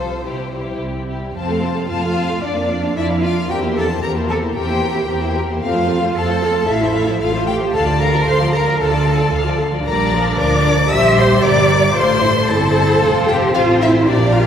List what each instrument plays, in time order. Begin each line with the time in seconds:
Already playing: double bass section C2, cello section C3, viola section F3 F4, violin section A4 C5
0.25 double bass section C2, cello section C3, viola section G3 E4, violin section G4
0.53 viola section G3 E4, violin section G4
0.81 double bass section C2, cello section C3
1.08 viola section G3 E4, violin section G4
1.35 double bass section F2, viola section C4 F4, cello section C4, violin section C5 A5
1.48 viola section A3 A4, violin section F5
1.62 viola section C4 F4, violin section A5
1.76 viola section A3 A4, violin section F5
1.89 double bass section F2, viola section C4 F4, cello section F4, violin section F5 A5
2.02 viola section A3 A4, violin section F5
2.16 viola section C4 F4, violin section A5
2.29 viola section A3 A4, violin section F5
2.42 double bass section F2, viola section D4 F4, cello section D4, violin section D5
2.55 viola section A#3 D4, violin section F5
2.70 viola section D4 F4, violin section D5
2.82 viola section A#3 D4, violin section F5
2.96 double bass section F2, viola section D4 F4, cello section E4, violin section D5 E5
3.10 viola section A#3 D4, violin section F5
3.23 viola section D4 F4, cello section F4, violin section D5 F5
3.36 viola section A#3 D4, violin section F5
3.49 double bass section E2, viola section C4 G4, cello section G4, violin section A#4 G5
3.62 viola section A#3 E4, violin section C5
3.75 viola section C4 G4, cello section A4, violin section A#4 A5
3.89 viola section A#3 E4, violin section C5
4.02 double bass section E2, viola section C4 G4, violin section A#4 A#5, cello section A#4
4.15 viola section A#3 E4, violin section C5
4.28 viola section C4 G4, cello section A4, violin section A#4 A5
4.41 viola section A#3 E4, violin section C5
4.55 double bass section E2, viola section C4 G4, cello section G4, violin section A#4 G5
4.68 viola section A#3 E4, violin section C5
4.82 viola section C4 G4, violin section A#4
4.96 viola section A#3 E4, violin section C5
5.08 double bass section E2, viola section C4 G4, violin section A#4
5.23 viola section A#3 E4, violin section C5
5.36 viola section C4 G4, violin section A#4
5.50 viola section A#3 E4, violin section C5
5.63 double bass section F2, viola section C4 A4, cello section F4, violin section F5
5.76 viola section A3 F4, violin section C5
5.88 viola section C4 A4, violin section F5
6.02 viola section A3 F4, violin section C5
6.15 double bass section F2, viola section C4 A4, cello section A4, violin section F5 A5
6.28 viola section A3 F4, violin section C5
6.42 viola section C4 A4, violin section F5
6.54 viola section A3 F4, violin section C5
6.67 double bass section A1, viola section A3 A4, cello section E4, violin section E5 F5
6.80 viola section F3 F4, violin section C5
6.94 viola section A3 A4, violin section F5
7.08 viola section F3 F4, violin section C5
7.21 double bass section A1, viola section A3 A4, cello section F4, violin section F5
7.34 viola section F3 F4, violin section C5
7.47 viola section A3 A4, cello section G4, violin section F5 G5
7.61 viola section F3 F4, violin section C5
7.74 double bass section D2, viola section D3 A4, cello section A4, violin section F5 A5
7.87 viola section F3 F4, violin section D5
8.00 viola section D3 A4, cello section A#4, violin section F5 A#5
8.14 viola section F3 F4, violin section D5
8.27 double bass section D2, viola section D3 A4, cello section C5, violin section F5 C6
8.41 viola section F3 F4, violin section D5
8.53 viola section D3 A4, cello section A#4, violin section F5 A#5
8.67 viola section F3 F4, violin section D5
8.80 double bass section D2, viola section D3 A4, cello section A4, violin section F5 A5
8.93 viola section F3 F4, violin section D5
9.06 viola section D3 A4, violin section F5
9.20 viola section F3 F4, violin section D5
9.33 double bass section D2, viola section D3 A4, violin section F5
9.46 viola section F3 F4, violin section D5
9.59 viola section D3 A4, violin section F5
9.72 viola section F3 F4, violin section D5
9.85 double bass section A#1, viola section G3 D4, cello section A#4, violin section D5 A#5
10.11 viola section F3
10.38 double bass section D2, viola section F3, violin section A#4 D6, cello section D5
10.66 violin section A#4
10.90 double bass section A#1, viola section G3 G4, violin section C5 E6, cello section E5
11.17 cello section C5, violin section C6
11.43 double bass section G1, violin section A#4 D6, cello section D5
11.70 violin section A#4
11.96 double bass section A1, viola section A3 F4, cello section C5, violin section C5 C6
12.22 viola section E4
12.49 double bass section G1, viola section C4 E4, cello section A4, violin section C5 A5
13.02 double bass section F1, viola section F4
13.28 cello section G4, violin section G5
13.55 double bass section A1, cello section F4, viola section F4, violin section C5 F5
13.81 cello section E4, violin section E5
14.08 double bass section A#1, cello section D4, viola section G4, violin section A#4 D5
14.34 cello section F4, violin section F5